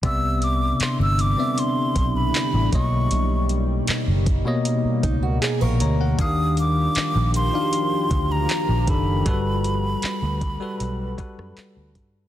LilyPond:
<<
  \new Staff \with { instrumentName = "Flute" } { \time 4/4 \key b \phrygian \tempo 4 = 78 e'''8 d'''8 c'''16 e'''16 d'''8 c'''8. b''8. cis'''8~ | cis'''8 r2. r8 | ees'''8 d'''4 c'''4~ c'''16 bes''8. b''8~ | b''2. r4 | }
  \new Staff \with { instrumentName = "Steel-string acoustic guitar" } { \time 4/4 \key b \phrygian r1 | r2 r8 dis'16 fis'16 aes'16 ais'8. | r1 | r1 | }
  \new Staff \with { instrumentName = "Tine electric piano" } { \time 4/4 \key b \phrygian << { r1 | r2. r16 <f'' cis'''>16 <cis'' ais''>16 <ais' fis''>16~ | <ais' fis''>16 r2. r8. | r1 | } \\ { <c b d'' e''>4~ <c b d'' e''>16 r8 <b c' d'' e''>4~ <b c' d'' e''>16 r8 <b, ais cis'' dis''>8~ | <b, ais cis'' dis''>4 r8. <b, ais cis'' dis''>8 r4. r16 | <ees d' fis' g' f''>4~ <ees d' fis' g' f''>16 r8 <d' ees' fis' g' f''>4~ <d' ees' fis' g' f''>16 r8 <ees d' g' a'>16 r16 | <g fis' a' b'>4~ <g fis' a' b'>16 r8 <g fis' a' b'>8 r16 <g fis' a' b'>4 r8 | } >> }
  \new Staff \with { instrumentName = "Ambient pad" } { \time 4/4 \key b \phrygian <d g d' e'>2.~ <d g d' e'>8 <ais dis'>8~ | <ais dis'>1 | <f bes f' g'>1 | <g fis' a' b'>1 | }
  \new Staff \with { instrumentName = "Fingered electric bass" } { \clef bass \time 4/4 \key b \phrygian c,4 r16 g,,8 r8. b,,8 r16 a,,16 b,,8 | b,,4 r16 fis,,8 r8. cis,8 r16 ais,,16 d,8 | ees,4 r16 bes,,8 r8. d,8 r16 bes,,16 fis,,8 | g,,4 r16 d,8 r16 b,,8 r16 fis,16 r16 d,16 g,8 | }
  \new DrumStaff \with { instrumentName = "Drums" } \drummode { \time 4/4 <hh bd>8 hh8 <hc hh>8 hh8 hh8 <hh bd>8 <hc hh>8 <hh bd>8 | hh8 hh8 <hc hh>8 <hh bd>8 hh8 <hh bd>8 <hc hh>8 hh8 | <hh bd>8 hh8 <hc hh>8 hh8 hh8 <hh bd>8 <hc hh>8 <hh bd>8 | <hh bd>8 hh8 <hc hh>8 <hh bd>8 hh8 <hh bd>16 ss16 <hc hh>8 <hh bd>8 | }
>>